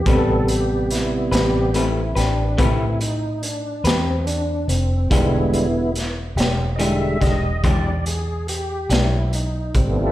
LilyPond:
<<
  \new Staff \with { instrumentName = "Clean electric guitar" } { \time 12/8 \key a \minor \tempo 4. = 47 <a c' g' b'>8 r4 <c' g' b'>8 <a c' g' b'>8 <c' g' b'>8 <a c' g' b'>8 r4 <c' g' b'>8 r4 | <e gis d' g'>8 r4 <gis d' g'>8 <e gis d' g'>8 <gis d' g'>8 <e gis d' g'>8 r4 <gis d' g'>8 r4 | }
  \new Staff \with { instrumentName = "Tonewheel organ" } { \time 12/8 \key a \minor a'8 g'8 e'8 g'8 e'8 d'8 e'8 dis'8 d'8 c'8 d'8 c'8 | <b e'>4 r4 <dis'' e''>8 dis''8 d''8 gis'8 g'8 e'8 dis'8 <g c'>8 | }
  \new Staff \with { instrumentName = "Tonewheel organ" } { \clef bass \time 12/8 \key a \minor <c g b>4. <c g b>8 r1 | <d g gis>8 r4. <d g gis>8 r2. r8 | }
  \new Staff \with { instrumentName = "Fingered electric bass" } { \clef bass \time 12/8 \key a \minor a,,4. a,,4 a,,8 a,4. e,4 f,,8 | e,,4. e,,4 e,,8 e,4. b,,4 gis,,8 | }
  \new DrumStaff \with { instrumentName = "Drums" } \drummode { \time 12/8 <hh bd>8 hh8 <hh sn>8 <hh sn>8 hh8 <hh sn>8 <hh bd>8 hh8 hh8 <hh sn>8 hh8 hh8 | <hh bd>8 hh8 <hh sn>8 <hh sn>8 hh8 <hh bd sn>8 <hh bd>8 hh8 hh8 <hh sn>8 hh8 <hh bd>8 | }
>>